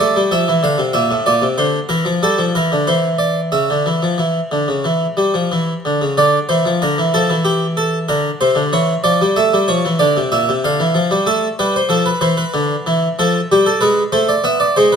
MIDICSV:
0, 0, Header, 1, 2, 480
1, 0, Start_track
1, 0, Key_signature, -1, "minor"
1, 0, Tempo, 634249
1, 720, Time_signature, 4, 2, 24, 8
1, 2166, Tempo, 656455
1, 5526, Tempo, 636943
1, 11180, End_track
2, 0, Start_track
2, 0, Title_t, "Harpsichord"
2, 0, Program_c, 0, 6
2, 0, Note_on_c, 0, 57, 87
2, 0, Note_on_c, 0, 74, 84
2, 118, Note_off_c, 0, 57, 0
2, 123, Note_on_c, 0, 55, 80
2, 148, Note_off_c, 0, 74, 0
2, 237, Note_on_c, 0, 53, 81
2, 240, Note_off_c, 0, 55, 0
2, 240, Note_on_c, 0, 76, 83
2, 356, Note_off_c, 0, 53, 0
2, 365, Note_on_c, 0, 52, 83
2, 389, Note_off_c, 0, 76, 0
2, 476, Note_on_c, 0, 50, 69
2, 480, Note_off_c, 0, 52, 0
2, 483, Note_on_c, 0, 77, 89
2, 592, Note_on_c, 0, 48, 75
2, 594, Note_off_c, 0, 50, 0
2, 630, Note_off_c, 0, 77, 0
2, 707, Note_on_c, 0, 76, 103
2, 711, Note_off_c, 0, 48, 0
2, 712, Note_on_c, 0, 46, 83
2, 831, Note_off_c, 0, 46, 0
2, 838, Note_on_c, 0, 45, 76
2, 858, Note_off_c, 0, 76, 0
2, 954, Note_off_c, 0, 45, 0
2, 955, Note_on_c, 0, 74, 87
2, 959, Note_on_c, 0, 46, 76
2, 1073, Note_on_c, 0, 48, 64
2, 1074, Note_off_c, 0, 46, 0
2, 1104, Note_off_c, 0, 74, 0
2, 1191, Note_off_c, 0, 48, 0
2, 1194, Note_on_c, 0, 72, 84
2, 1197, Note_on_c, 0, 50, 76
2, 1343, Note_off_c, 0, 72, 0
2, 1346, Note_off_c, 0, 50, 0
2, 1430, Note_on_c, 0, 70, 78
2, 1431, Note_on_c, 0, 52, 79
2, 1551, Note_off_c, 0, 52, 0
2, 1553, Note_on_c, 0, 53, 73
2, 1582, Note_off_c, 0, 70, 0
2, 1673, Note_off_c, 0, 53, 0
2, 1685, Note_on_c, 0, 55, 76
2, 1688, Note_on_c, 0, 69, 87
2, 1800, Note_off_c, 0, 55, 0
2, 1803, Note_on_c, 0, 53, 69
2, 1836, Note_off_c, 0, 69, 0
2, 1920, Note_off_c, 0, 53, 0
2, 1932, Note_on_c, 0, 70, 84
2, 1933, Note_on_c, 0, 52, 72
2, 2046, Note_off_c, 0, 52, 0
2, 2060, Note_on_c, 0, 50, 70
2, 2079, Note_off_c, 0, 70, 0
2, 2169, Note_off_c, 0, 50, 0
2, 2174, Note_on_c, 0, 72, 78
2, 2178, Note_on_c, 0, 52, 62
2, 2318, Note_off_c, 0, 72, 0
2, 2403, Note_on_c, 0, 74, 70
2, 2551, Note_off_c, 0, 74, 0
2, 2634, Note_off_c, 0, 52, 0
2, 2647, Note_on_c, 0, 49, 65
2, 2648, Note_on_c, 0, 76, 65
2, 2762, Note_off_c, 0, 49, 0
2, 2781, Note_on_c, 0, 50, 67
2, 2890, Note_off_c, 0, 50, 0
2, 2896, Note_on_c, 0, 52, 53
2, 3008, Note_off_c, 0, 52, 0
2, 3017, Note_on_c, 0, 53, 49
2, 3128, Note_off_c, 0, 53, 0
2, 3130, Note_on_c, 0, 52, 53
2, 3279, Note_off_c, 0, 52, 0
2, 3375, Note_on_c, 0, 50, 59
2, 3489, Note_off_c, 0, 50, 0
2, 3496, Note_on_c, 0, 49, 50
2, 3610, Note_off_c, 0, 49, 0
2, 3615, Note_on_c, 0, 52, 58
2, 3764, Note_off_c, 0, 52, 0
2, 3854, Note_on_c, 0, 55, 61
2, 3970, Note_off_c, 0, 55, 0
2, 3979, Note_on_c, 0, 53, 56
2, 4093, Note_off_c, 0, 53, 0
2, 4107, Note_on_c, 0, 52, 65
2, 4254, Note_off_c, 0, 52, 0
2, 4310, Note_off_c, 0, 76, 0
2, 4353, Note_on_c, 0, 50, 56
2, 4463, Note_off_c, 0, 50, 0
2, 4471, Note_on_c, 0, 49, 55
2, 4582, Note_off_c, 0, 49, 0
2, 4588, Note_on_c, 0, 50, 84
2, 4590, Note_on_c, 0, 74, 100
2, 4733, Note_off_c, 0, 50, 0
2, 4734, Note_off_c, 0, 74, 0
2, 4818, Note_on_c, 0, 72, 89
2, 4821, Note_on_c, 0, 52, 73
2, 4934, Note_off_c, 0, 52, 0
2, 4940, Note_on_c, 0, 53, 72
2, 4964, Note_off_c, 0, 72, 0
2, 5052, Note_off_c, 0, 53, 0
2, 5060, Note_on_c, 0, 70, 82
2, 5061, Note_on_c, 0, 50, 69
2, 5172, Note_off_c, 0, 50, 0
2, 5179, Note_on_c, 0, 52, 72
2, 5204, Note_off_c, 0, 70, 0
2, 5290, Note_off_c, 0, 52, 0
2, 5294, Note_on_c, 0, 69, 93
2, 5299, Note_on_c, 0, 53, 75
2, 5408, Note_off_c, 0, 53, 0
2, 5409, Note_on_c, 0, 52, 72
2, 5438, Note_off_c, 0, 69, 0
2, 5518, Note_on_c, 0, 67, 93
2, 5668, Note_off_c, 0, 67, 0
2, 5762, Note_on_c, 0, 69, 82
2, 5912, Note_off_c, 0, 69, 0
2, 5988, Note_off_c, 0, 52, 0
2, 5999, Note_on_c, 0, 70, 93
2, 6000, Note_on_c, 0, 50, 75
2, 6151, Note_off_c, 0, 50, 0
2, 6151, Note_off_c, 0, 70, 0
2, 6242, Note_on_c, 0, 72, 93
2, 6245, Note_on_c, 0, 48, 81
2, 6352, Note_on_c, 0, 50, 76
2, 6363, Note_off_c, 0, 48, 0
2, 6393, Note_off_c, 0, 72, 0
2, 6476, Note_off_c, 0, 50, 0
2, 6483, Note_on_c, 0, 52, 83
2, 6485, Note_on_c, 0, 73, 99
2, 6634, Note_off_c, 0, 52, 0
2, 6635, Note_off_c, 0, 73, 0
2, 6717, Note_on_c, 0, 74, 104
2, 6718, Note_on_c, 0, 53, 83
2, 6840, Note_off_c, 0, 53, 0
2, 6850, Note_on_c, 0, 55, 77
2, 6870, Note_off_c, 0, 74, 0
2, 6962, Note_on_c, 0, 76, 90
2, 6963, Note_on_c, 0, 57, 78
2, 6966, Note_off_c, 0, 55, 0
2, 7082, Note_off_c, 0, 57, 0
2, 7091, Note_on_c, 0, 55, 83
2, 7113, Note_off_c, 0, 76, 0
2, 7201, Note_on_c, 0, 73, 93
2, 7206, Note_off_c, 0, 55, 0
2, 7207, Note_on_c, 0, 53, 73
2, 7324, Note_off_c, 0, 53, 0
2, 7329, Note_on_c, 0, 52, 71
2, 7352, Note_off_c, 0, 73, 0
2, 7437, Note_on_c, 0, 74, 101
2, 7440, Note_on_c, 0, 50, 79
2, 7445, Note_off_c, 0, 52, 0
2, 7561, Note_off_c, 0, 50, 0
2, 7569, Note_on_c, 0, 48, 85
2, 7589, Note_off_c, 0, 74, 0
2, 7682, Note_on_c, 0, 76, 102
2, 7685, Note_off_c, 0, 48, 0
2, 7685, Note_on_c, 0, 46, 77
2, 7803, Note_off_c, 0, 46, 0
2, 7812, Note_on_c, 0, 48, 80
2, 7833, Note_off_c, 0, 76, 0
2, 7927, Note_off_c, 0, 48, 0
2, 7928, Note_on_c, 0, 50, 78
2, 7930, Note_on_c, 0, 77, 103
2, 8044, Note_off_c, 0, 50, 0
2, 8044, Note_on_c, 0, 52, 80
2, 8154, Note_on_c, 0, 53, 79
2, 8161, Note_off_c, 0, 52, 0
2, 8275, Note_off_c, 0, 53, 0
2, 8280, Note_on_c, 0, 55, 92
2, 8390, Note_off_c, 0, 77, 0
2, 8395, Note_on_c, 0, 57, 108
2, 8397, Note_off_c, 0, 55, 0
2, 8399, Note_on_c, 0, 69, 84
2, 8544, Note_off_c, 0, 57, 0
2, 8547, Note_off_c, 0, 69, 0
2, 8642, Note_on_c, 0, 71, 87
2, 8643, Note_on_c, 0, 55, 101
2, 8755, Note_off_c, 0, 71, 0
2, 8770, Note_on_c, 0, 72, 85
2, 8789, Note_off_c, 0, 55, 0
2, 8866, Note_on_c, 0, 53, 99
2, 8872, Note_on_c, 0, 69, 77
2, 8879, Note_off_c, 0, 72, 0
2, 8990, Note_off_c, 0, 69, 0
2, 8993, Note_on_c, 0, 71, 89
2, 9018, Note_off_c, 0, 53, 0
2, 9109, Note_on_c, 0, 52, 110
2, 9110, Note_on_c, 0, 72, 81
2, 9111, Note_off_c, 0, 71, 0
2, 9230, Note_off_c, 0, 72, 0
2, 9231, Note_on_c, 0, 71, 78
2, 9261, Note_off_c, 0, 52, 0
2, 9354, Note_on_c, 0, 50, 114
2, 9505, Note_off_c, 0, 50, 0
2, 9601, Note_on_c, 0, 52, 103
2, 9750, Note_off_c, 0, 52, 0
2, 9819, Note_off_c, 0, 71, 0
2, 9845, Note_on_c, 0, 53, 112
2, 9849, Note_on_c, 0, 69, 91
2, 9993, Note_off_c, 0, 53, 0
2, 9995, Note_off_c, 0, 69, 0
2, 10092, Note_on_c, 0, 55, 96
2, 10092, Note_on_c, 0, 67, 85
2, 10202, Note_on_c, 0, 69, 77
2, 10204, Note_off_c, 0, 67, 0
2, 10238, Note_off_c, 0, 55, 0
2, 10311, Note_on_c, 0, 71, 103
2, 10317, Note_on_c, 0, 56, 114
2, 10318, Note_off_c, 0, 69, 0
2, 10463, Note_off_c, 0, 71, 0
2, 10468, Note_off_c, 0, 56, 0
2, 10550, Note_on_c, 0, 57, 109
2, 10550, Note_on_c, 0, 72, 86
2, 10672, Note_off_c, 0, 72, 0
2, 10673, Note_on_c, 0, 74, 86
2, 10703, Note_off_c, 0, 57, 0
2, 10787, Note_on_c, 0, 59, 104
2, 10792, Note_on_c, 0, 76, 86
2, 10794, Note_off_c, 0, 74, 0
2, 10909, Note_on_c, 0, 74, 91
2, 10913, Note_off_c, 0, 76, 0
2, 10940, Note_off_c, 0, 59, 0
2, 11032, Note_off_c, 0, 74, 0
2, 11032, Note_on_c, 0, 72, 85
2, 11037, Note_on_c, 0, 56, 119
2, 11153, Note_off_c, 0, 72, 0
2, 11153, Note_on_c, 0, 71, 87
2, 11180, Note_off_c, 0, 56, 0
2, 11180, Note_off_c, 0, 71, 0
2, 11180, End_track
0, 0, End_of_file